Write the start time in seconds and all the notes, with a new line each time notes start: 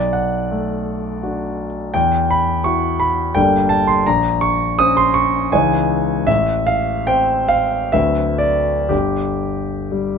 Already playing: B1 D5
0.13 F#5
0.51 A3
1.23 D4 F#4
1.94 E2 G5
2.31 B5
2.64 E4 F#4 C#6
3.00 B5
3.35 G1 G3 A#3 D4 A4 G5
3.69 A5
3.87 C6
4.06 A#1 A#5
4.41 C#6
4.79 C#4 C5 D#6
4.97 C6
5.14 C#6
5.52 C#2 E3 G#3 D#4 C#5 G#5
6.27 A1 E5
6.67 F5
7.07 C4 C5 G5
7.48 F5
7.92 D2 F#3 A3 C4 B4 E5
8.38 D5
8.89 G1 G4
9.92 G3